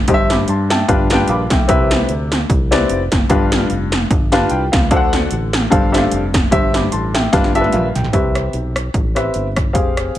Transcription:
0.08 fingered electric bass G1, grand piano G2 G4 C5 D#5, kick, closed hi-hat
0.14 grand piano E5
0.30 grand piano B5 D6, snare, closed hi-hat
0.48 fingered electric bass G2, grand piano A5 C6, closed hi-hat
0.70 grand piano E5 G5 A5, snare, closed hi-hat
0.88 fingered electric bass G1, grand piano G2 D4 F4 G4 B4 F5 G5, kick, closed hi-hat
1.10 grand piano D4 F4 G4 B4 G5, snare, closed hi-hat
1.28 fingered electric bass A#1, grand piano F5 B5 D6, closed hi-hat
1.50 fingered electric bass B1, grand piano E5 G5, kick, snare, closed hi-hat
1.68 fingered electric bass C2, grand piano C3 C4 E4 G4 B4 E5, kick, closed hi-hat
1.91 snare, closed hi-hat
2.09 fingered electric bass D2, closed hi-hat
2.32 snare, closed hi-hat
2.50 fingered electric bass C2, kick, closed hi-hat
2.71 grand piano C4 E4 G4 B4 D5, snare, closed hi-hat
2.89 fingered electric bass F1, closed hi-hat
3.12 fingered electric bass F#1, kick, snare, closed hi-hat
3.29 fingered electric bass G1, grand piano G2 D4 F4 G4 B4 F5, kick, closed hi-hat
3.52 snare, closed hi-hat
3.70 fingered electric bass F1, closed hi-hat
3.92 snare, closed hi-hat
4.10 fingered electric bass G1, kick, closed hi-hat
4.32 grand piano D4 F4 G4 B4 F5 A5, snare, closed hi-hat
4.50 fingered electric bass C2, grand piano G5, closed hi-hat
4.72 fingered electric bass C#2, grand piano F5, kick, snare, closed hi-hat
4.91 fingered electric bass D2, grand piano D3 D4 F#4 A4 C5 F5, kick, closed hi-hat
4.96 grand piano F#5
5.13 snare, closed hi-hat
5.31 fingered electric bass A1, closed hi-hat
5.53 snare, closed hi-hat
5.70 fingered electric bass G1, grand piano G2 D4 G4 A4 C5 F5, kick, closed hi-hat
5.92 grand piano D4 G4 A4 C5 E5, snare, closed hi-hat
5.98 grand piano F5
6.11 fingered electric bass F1, closed hi-hat
6.34 kick, snare, closed hi-hat
6.51 fingered electric bass G1, grand piano G2 G4 C5 E5, kick, closed hi-hat
6.74 grand piano B5 D6, snare, closed hi-hat
6.92 fingered electric bass A1, grand piano A5 C6, closed hi-hat
7.14 grand piano E5 G5, snare, closed hi-hat
7.32 fingered electric bass G1, grand piano G2 D4 F4 G4 B4 F5, kick, snare, closed hi-hat
7.44 snare
7.55 grand piano D4 F4 G4 A4 E5, closed hi-hat
7.61 grand piano B4, high tom
7.72 fingered electric bass A#1, grand piano F5, closed hi-hat, mid tom
7.95 fingered electric bass B1, grand piano G5, closed hi-hat, floor tom
8.04 floor tom
8.13 fingered electric bass C2, grand piano C3 C4 G4 B4 E5, kick, closed hi-hat
8.35 cross-stick, closed hi-hat
8.53 fingered electric bass B1, closed hi-hat
8.76 cross-stick, closed hi-hat
8.94 fingered electric bass A1, kick, closed hi-hat
9.15 grand piano C4 G4 B4 E5, cross-stick, closed hi-hat
9.34 fingered electric bass G1, closed hi-hat
9.56 kick, cross-stick, closed hi-hat
9.73 fingered electric bass F1, grand piano C4 G4 G#4 F5, kick, closed hi-hat
9.97 cross-stick, closed hi-hat
10.15 closed hi-hat

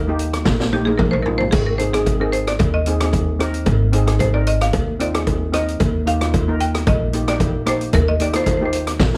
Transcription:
Already playing: upright bass D#2
0.07 steel pan A#3 D#4 G4
0.19 closed hi-hat
0.33 cross-stick, closed hi-hat
0.45 upright bass A#1, kick, snare, cowbell
0.60 snare
0.72 steel pan A#3 D#4 G4, marimba G4, high tom
0.85 steel pan A#3 D#4 A#4, marimba G#4, high tom
0.98 marimba A#4, kick, mid tom, cowbell
1.11 marimba C5, mid tom
1.22 steel pan A#3, marimba A#4, floor tom
1.27 steel pan D#4 F4
1.38 marimba C5, floor tom
1.51 upright bass G#1, marimba G#4, kick, closed hi-hat, splash, cowbell
1.66 marimba A#4
1.78 steel pan C4 D#4 G#4, marimba C5, closed hi-hat
1.93 steel pan C4 D#4 G#4, marimba G#4, cross-stick, closed hi-hat
2.06 kick, closed hi-hat, cowbell
2.20 steel pan C4 D#4 G#4, marimba A#4
2.32 marimba C5, closed hi-hat
2.47 marimba D5, cross-stick, closed hi-hat
2.59 upright bass D#2, kick, closed hi-hat, cowbell
2.74 marimba D#5
2.86 steel pan C4 D#4 G#4, closed hi-hat
3.00 steel pan C4 D#4 G#4, cross-stick, closed hi-hat
3.13 kick, closed hi-hat, cowbell
3.39 steel pan C4 D#4 A#4, cross-stick, closed hi-hat
3.54 closed hi-hat
3.66 upright bass G#1, kick, closed hi-hat, cowbell
3.92 steel pan C4 D#4 G#4, closed hi-hat
4.06 steel pan C4 D#4 G#4, cross-stick, closed hi-hat
4.19 marimba C5, kick, closed hi-hat, cowbell
4.33 steel pan C4 D#4 A#4, marimba D5
4.47 marimba D#5, closed hi-hat
4.61 marimba F5, cross-stick, closed hi-hat
4.73 upright bass D#2, kick, closed hi-hat, cowbell
5.00 steel pan C4 D#4 F4, marimba D5, closed hi-hat
5.14 steel pan C4 D#4 G#4, cross-stick, closed hi-hat
5.27 kick, closed hi-hat, cowbell
5.52 steel pan C4 D#4 A#4, marimba D#5, cross-stick, closed hi-hat
5.68 closed hi-hat
5.80 upright bass D#2, kick, closed hi-hat, cowbell
6.06 steel pan A#3 D#4 G4, marimba F5, closed hi-hat
6.21 steel pan A#3 D#4 F4, cross-stick, closed hi-hat
6.34 kick, closed hi-hat, cowbell
6.48 steel pan A#3 D#4 A#4
6.60 marimba G5, closed hi-hat
6.75 cross-stick, closed hi-hat
6.87 upright bass A#1, marimba D#5, kick, closed hi-hat, cowbell
7.13 steel pan A#3 D#4 G4, closed hi-hat
7.28 steel pan A#3 D#4 G4, marimba D5, cross-stick, closed hi-hat
7.40 kick, closed hi-hat, cowbell
7.66 steel pan A#3 D#4 G4, marimba C5, cross-stick, closed hi-hat
7.81 closed hi-hat
7.93 upright bass D#2, marimba A#4, kick, closed hi-hat, cowbell
8.08 marimba D#5
8.20 steel pan A#3 D#4 G4, marimba D5, closed hi-hat
8.33 steel pan A#3 D#4 F4, marimba C5, cross-stick, closed hi-hat
8.44 marimba C5, kick, closed hi-hat, cowbell
8.51 marimba C5
8.57 steel pan A#3 D#4, marimba C5
8.62 steel pan G4, marimba C5
8.73 marimba C5, closed hi-hat
8.87 cross-stick, closed hi-hat
8.99 upright bass A#1, kick, snare, cowbell

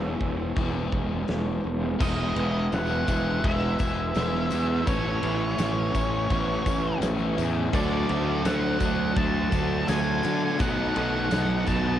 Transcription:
Already playing: fingered electric bass E1, overdriven electric guitar E3 G#3 B3 E4 G#4, twelve-string acoustic guitar E3 B3 C#4 G#4, lead electric guitar E5
0.20 fingered electric bass E1, twelve-string acoustic guitar G#4, kick
0.55 fingered electric bass E1, overdriven electric guitar E3 G#3 B3 E4, twelve-string acoustic guitar B3, kick, open hi-hat
0.92 fingered electric bass E1, twelve-string acoustic guitar C#4, kick
1.28 fingered electric bass E1, twelve-string acoustic guitar E3, snare, open hi-hat
1.64 fingered electric bass E1, twelve-string acoustic guitar B3
1.99 fingered electric bass E1, overdriven electric guitar E3 G#3 B3 E4, lead electric guitar D#5, kick, crash, tambourine
2.35 fingered electric bass E1, overdriven electric guitar G#3 B3 E4, twelve-string acoustic guitar B3, ride
2.71 fingered electric bass E1, overdriven electric guitar E3 G#3 B3 E4, lead electric guitar F#5, snare, ride, tambourine
3.07 fingered electric bass E1, overdriven electric guitar G#3 B3 E4, kick, ride, tambourine
3.43 fingered electric bass E1, overdriven electric guitar E3 G#3 B3 E4, twelve-string acoustic guitar B3, lead electric guitar E5, kick, ride, tambourine
3.79 fingered electric bass E1, overdriven electric guitar G#3 B3 E4, kick, ride, tambourine
4.14 fingered electric bass E1, overdriven electric guitar E3 G#3 B3 E4, twelve-string acoustic guitar B3, snare, ride, tambourine
4.51 fingered electric bass E2, overdriven electric guitar G#3 B3 E4, ride, tambourine
4.87 fingered electric bass A1, overdriven electric guitar A2 E3 A3 C#4 E4, twelve-string acoustic guitar E3, lead electric guitar C#5, kick, ride, tambourine
5.23 fingered electric bass A1, overdriven electric guitar A3 C#4 E4, twelve-string acoustic guitar B3, ride
5.57 fingered electric bass A1, overdriven electric guitar E3 A3 C#4 E4, twelve-string acoustic guitar C#4, snare, ride, tambourine
5.94 fingered electric bass A1, twelve-string acoustic guitar E3, overdriven electric guitar A3 C#4 E4, kick, ride, tambourine
6.30 fingered electric bass A1, overdriven electric guitar A2 E3 A3 C#4 E4, twelve-string acoustic guitar B3, kick, ride, tambourine
6.65 fingered electric bass A1, overdriven electric guitar A3 C#4 E4, twelve-string acoustic guitar C#4, kick, ride, tambourine
7.01 fingered electric bass A1, overdriven electric guitar E3 A3 C#4 E4, twelve-string acoustic guitar B3, snare, ride, tambourine
7.37 fingered electric bass E2, twelve-string acoustic guitar E3, overdriven electric guitar A3 C#4 E4, ride, tambourine
7.73 fingered electric bass D2, overdriven electric guitar D3 F#3 A3 D4 F#4 A4, twelve-string acoustic guitar F#3, distorted electric guitar F#3, lead electric guitar D5, kick, ride, tambourine
8.09 fingered electric bass D2, distorted electric guitar D3 F#3 A3, twelve-string acoustic guitar A3, overdriven electric guitar D4 F#4 A4, ride
8.44 fingered electric bass D2, distorted electric guitar D3 F#3, overdriven electric guitar A3 D4 F#4 A4, lead electric guitar F#5, snare, ride, tambourine
8.80 fingered electric bass D2, distorted electric guitar D3 F#3 A3, twelve-string acoustic guitar F#3, overdriven electric guitar D4 F#4 A4, kick, ride, tambourine
9.16 fingered electric bass D2, overdriven electric guitar D3 A3 D4 F#4 A4, distorted electric guitar F#3, twelve-string acoustic guitar A3, lead electric guitar A5, kick, ride, tambourine
9.52 fingered electric bass D2, distorted electric guitar D3 F#3 A3, overdriven electric guitar D4 F#4 A4, kick, ride, tambourine
9.88 fingered electric bass D2, distorted electric guitar D3 F#3, overdriven electric guitar A3 D4 F#4 A4, twelve-string acoustic guitar A3, lead electric guitar G#5, snare, ride, tambourine
10.23 distorted electric guitar D3 F#3 A3, fingered electric bass D3, twelve-string acoustic guitar F#3, overdriven electric guitar D4 F#4 A4, ride, tambourine
10.59 fingered electric bass B1, overdriven electric guitar B2 D#3 F#3 A3 B3 D#4 A4, twelve-string acoustic guitar F#3, lead electric guitar F#5, kick, ride, tambourine
10.94 fingered electric bass B1, distorted electric guitar B2, overdriven electric guitar F#3 B3 D#4 A4, twelve-string acoustic guitar A3, ride, tambourine
11.15 snare
11.31 fingered electric bass B1, distorted electric guitar B2, overdriven electric guitar F#3 B3 D#4 A4, snare, ride, tambourine
11.67 fingered electric bass B1, distorted electric guitar B2, twelve-string acoustic guitar F#3, overdriven electric guitar F#3 B3 D#4 A4, lead electric guitar A5, kick, ride, tambourine

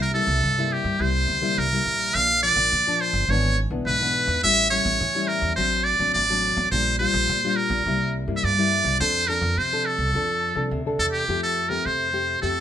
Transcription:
Already playing: upright bass C2, nylon-string guitar C3
0.02 muted trumpet A#4
0.14 nylon-string guitar G3 A#3 E4, muted trumpet A4
0.27 upright bass C2
0.43 nylon-string guitar G2, upright bass C3
0.58 nylon-string guitar G3 A#3 E4
0.73 muted trumpet G4
0.84 upright bass G2
1.00 upright bass C2, nylon-string guitar C3 G3 A#3 E4, muted trumpet C5
1.28 upright bass D2
1.42 nylon-string guitar G3 A#3 E4
1.57 upright bass C2, nylon-string guitar G2, muted trumpet A#4
1.73 nylon-string guitar G3 A#3 E4
1.86 upright bass A#1
2.15 upright bass A#1, nylon-string guitar A#2 F3 A#3 D4, muted trumpet F5
2.43 nylon-string guitar F3 A#3 D4, muted trumpet D5
2.56 upright bass A#1
2.72 upright bass A#2, nylon-string guitar F3
2.87 nylon-string guitar F3 A#3 D4
3.01 muted trumpet C5
3.13 upright bass G1
3.28 upright bass G#1, nylon-string guitar G#2 E3 B3 D4, muted trumpet C#5
3.70 upright bass B1, nylon-string guitar E3 B3 D4
3.86 upright bass B1, nylon-string guitar G#2, muted trumpet B4
4.02 nylon-string guitar E3 B3 D4
4.27 upright bass E2
4.43 upright bass A1, nylon-string guitar A2 G3 C#4 E4, muted trumpet E5
4.70 nylon-string guitar G3 C#4 E4, muted trumpet C#5
4.85 upright bass A1
5.01 upright bass A2, nylon-string guitar E3
5.15 nylon-string guitar G3 C#4 E4
5.28 muted trumpet A#4
5.42 upright bass E2
5.56 upright bass A1, nylon-string guitar A2 F#3 C4 D4, muted trumpet C5
5.84 muted trumpet D5
5.99 upright bass A1, nylon-string guitar F#3 C4 D4
6.14 upright bass A1, nylon-string guitar A2, muted trumpet D5
6.30 nylon-string guitar F#3 C4 D4
6.57 upright bass A1
6.71 upright bass A#1, nylon-string guitar A#2 G3 D4 F4, muted trumpet C5
6.99 nylon-string guitar G3 D4 F4, muted trumpet C5
7.14 upright bass A#1
7.29 upright bass A#2, nylon-string guitar A#2
7.44 nylon-string guitar G3 D4 F4
7.56 muted trumpet A#4
7.70 upright bass A#1
7.86 upright bass C2, nylon-string guitar C3 G3 A#3 E4
8.28 upright bass G2, nylon-string guitar G3 A#3 E4
8.36 muted trumpet E5
8.44 upright bass G2, nylon-string guitar G2, muted trumpet D5
8.58 nylon-string guitar G3 A#3 E4
8.84 upright bass C2
9.00 upright bass F2, nylon-string guitar F3 C4 D4 A4, muted trumpet C5
9.28 nylon-string guitar C4 D4 A4, muted trumpet A#4
9.41 upright bass F2
9.57 nylon-string guitar C3, upright bass F3, muted trumpet C5
9.72 nylon-string guitar C4 D4 A4
9.86 muted trumpet A4
9.98 upright bass C2
10.14 upright bass F2, nylon-string guitar F3 C4 D4 A4
10.55 upright bass C2, nylon-string guitar C4 D4 A4
10.71 upright bass D2, nylon-string guitar C3
10.86 nylon-string guitar C4 D4 A4
10.99 upright bass E2, muted trumpet A4
11.12 muted trumpet G4
11.28 upright bass F2, nylon-string guitar F3 A3 C4 G4
11.43 muted trumpet A4
11.69 nylon-string guitar A3 C4 G4, muted trumpet A#4
11.85 upright bass F2, nylon-string guitar C3, muted trumpet C5
12.13 nylon-string guitar A3 C4 G4
12.42 upright bass F2, nylon-string guitar F3 A3 C4 G4, muted trumpet A4

